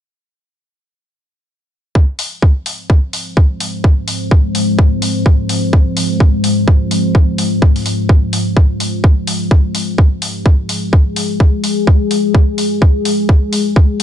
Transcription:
1.95 ambient pad G#3 F4 C5, kick
2.19 open hi-hat
2.42 kick
2.66 open hi-hat
2.90 kick
3.13 open hi-hat
3.37 kick
3.60 open hi-hat
3.84 kick
4.08 open hi-hat
4.31 kick
4.55 open hi-hat
4.79 kick
5.02 open hi-hat
5.26 kick
5.49 open hi-hat
5.73 kick
5.97 open hi-hat
6.20 kick
6.44 open hi-hat
6.68 kick
6.91 open hi-hat
7.15 kick
7.38 open hi-hat
7.62 kick
7.76 open hi-hat
7.86 open hi-hat
8.09 kick
8.33 open hi-hat
8.57 kick
8.80 open hi-hat
9.04 kick
9.27 open hi-hat
9.51 ambient pad G#4, kick
9.75 open hi-hat
9.98 kick
10.22 open hi-hat
10.46 kick
10.69 open hi-hat
10.93 kick
11.16 open hi-hat
11.40 kick
11.64 open hi-hat
11.87 kick
12.11 open hi-hat
12.35 kick
12.58 open hi-hat
12.82 kick
13.05 open hi-hat
13.29 kick
13.53 open hi-hat
13.76 kick
14.00 open hi-hat

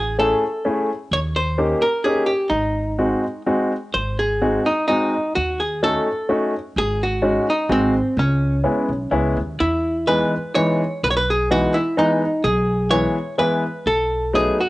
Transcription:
Already playing: upright bass A1, hollow-body jazz guitar G#4
0.19 upright piano A3 C#4 E4 G#4, hollow-body jazz guitar A4
0.65 upright piano A3 C#4 E4 G#4
1.11 upright bass D#2, hollow-body jazz guitar C#5
1.36 hollow-body jazz guitar C5
1.58 upright piano A#3 C#4 D#4 G4
1.82 hollow-body jazz guitar A#4
2.04 upright piano A#3 C#4 D#4 G4, hollow-body jazz guitar G#4
2.26 hollow-body jazz guitar G4
2.50 upright bass G#1, hollow-body jazz guitar D#4
2.98 upright piano G#3 C4 D#4 F#4
3.46 upright piano G#3 C4 D#4 F#4
3.94 upright bass G#1, hollow-body jazz guitar C5
4.19 hollow-body jazz guitar G#4
4.42 upright piano G#3 C4 D#4 F#4
4.66 hollow-body jazz guitar D#4
4.88 upright piano G#3 C4 D#4 F#4, hollow-body jazz guitar D#4
5.35 upright bass D#2, hollow-body jazz guitar F#4
5.60 hollow-body jazz guitar G#4
5.83 upright piano A3 C#4 D#4 F#4, hollow-body jazz guitar A4
6.29 upright piano A3 C#4 D#4 F#4
6.76 upright bass G#1, hollow-body jazz guitar G#4
7.03 hollow-body jazz guitar F#4
7.22 upright piano G#3 C#4 D#4 F#4
7.50 hollow-body jazz guitar D#4
7.69 upright bass G#1, upright piano G#3 C4 D#4 F#4, hollow-body jazz guitar C4
8.17 upright bass C#2, hollow-body jazz guitar C#4
8.64 upright piano G#3 B3 C#4 E4
8.89 upright bass B1
9.11 upright bass C#2, upright piano G#3 B3 C#4 E4
9.37 upright bass D#2
9.60 upright bass E2, hollow-body jazz guitar E4
10.07 upright piano E3 G#3 B3 D#4, hollow-body jazz guitar B4
10.55 upright piano E3 G#3 B3 D#4, hollow-body jazz guitar C#5
11.03 upright bass B1, hollow-body jazz guitar B4
11.10 hollow-body jazz guitar C#5
11.17 hollow-body jazz guitar B4
11.30 hollow-body jazz guitar G#4
11.51 upright piano E3 G#3 B3 D#4, hollow-body jazz guitar F#4
11.74 hollow-body jazz guitar E4
11.97 upright piano E3 G#3 B3 D#4, hollow-body jazz guitar D#4
12.44 upright bass B1, hollow-body jazz guitar G#4
12.90 upright piano E3 G#3 B3 E4, hollow-body jazz guitar C#5
13.38 upright piano E3 G#3 B3 E4, hollow-body jazz guitar B4
13.86 upright bass B1, hollow-body jazz guitar A4
14.33 upright piano F#3 A3 B3 D#4, hollow-body jazz guitar G#4
14.61 hollow-body jazz guitar F#4

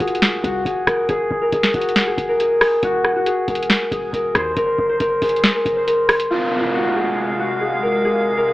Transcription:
Already playing: harp F#4 A#4 C5
0.00 808-style bass F1, harp G#4, kick, closed hi-hat
0.08 closed hi-hat
0.15 closed hi-hat
0.22 snare, closed hi-hat
0.44 808-style bass C2, harp F#4, kick, closed hi-hat
0.65 808-style bass F1, harp G#4, kick, closed hi-hat
0.87 808-style bass F1, harp A#4, kick, cross-stick, closed hi-hat
1.09 808-style bass F1, harp G#4, kick, closed hi-hat
1.31 808-style bass F1, kick
1.42 harp A#4
1.52 808-style bass F1, harp G#4, kick, closed hi-hat
1.63 snare
1.74 808-style bass F1, harp F#4, kick, closed hi-hat
1.81 closed hi-hat
1.89 closed hi-hat
1.96 snare, closed hi-hat
2.07 harp G#4
2.18 808-style bass F1, kick, closed hi-hat
2.29 harp A#4
2.40 harp G#4, closed hi-hat
2.61 cross-stick, open hi-hat
2.83 808-style bass D#1, harp F#4, kick, closed hi-hat
3.05 cross-stick
3.16 harp F#4
3.26 harp G#4, closed hi-hat
3.48 808-style bass D#1, harp A#4, kick, closed hi-hat
3.55 closed hi-hat
3.63 closed hi-hat
3.70 snare, closed hi-hat
3.91 808-style bass D#1, harp G#4, kick, closed hi-hat
4.13 808-style bass D#1, harp A#4, kick, closed hi-hat
4.35 808-style bass D#2, harp C5, kick, cross-stick, closed hi-hat
4.57 808-style bass F#1, harp A#4, kick, closed hi-hat
4.78 808-style bass F#1, kick
4.89 harp C5
5.00 808-style bass F#1, harp A#4, kick, closed hi-hat
5.22 808-style bass F#1, harp G#4, kick, closed hi-hat, open hi-hat
5.29 closed hi-hat
5.36 closed hi-hat
5.44 snare, closed hi-hat
5.54 harp A#4
5.65 808-style bass F#1, kick, closed hi-hat
5.76 harp C5
5.87 harp A#4, closed hi-hat
6.09 cross-stick, closed hi-hat, open hi-hat
6.20 closed hi-hat
6.30 analog synth pad C3 G#3 F5, harp F4, downlifter
6.63 harp F4
6.74 harp F#4
6.96 harp G#4
7.39 harp F#4
7.61 harp G#4
7.83 harp A#4
8.05 harp G#4
8.37 harp A#4
8.48 harp G#4

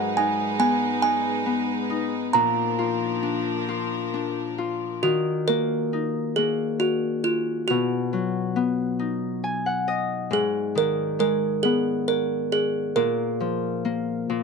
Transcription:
Already playing: harp G#2 F#4 A#4, string section G#3 D#4 B4, music box F#5
0.17 harp D#4, music box G#5
0.59 harp B3, music box G#5
1.02 harp D#4, music box G#5
1.46 harp B3
1.90 harp D#4
2.33 harp A#2, string section F3 D4 A#4, music box A#5
2.79 harp F4
3.23 harp D4
3.69 harp F4
4.14 harp D4
4.58 harp F4
5.03 harp D#3, music box F#4
5.48 harp A#3, music box A#4
5.93 harp D#4
6.36 harp A#3, music box G#4
6.80 music box F#4
7.24 music box F4
7.68 harp B2, music box F#4
8.13 harp F#3
8.56 harp B3
8.99 harp D#4
9.44 harp G#5
9.66 harp F#5
9.88 harp D#5
10.31 harp G#2, music box G#4
10.75 harp D#3, music box A#4
11.19 harp G#3, music box A#4
11.63 harp B3, music box G#4
12.08 music box A#4
12.52 music box G#4
12.96 harp A#2, music box A#4
13.40 harp F3
13.85 harp A#3
14.30 harp A#2

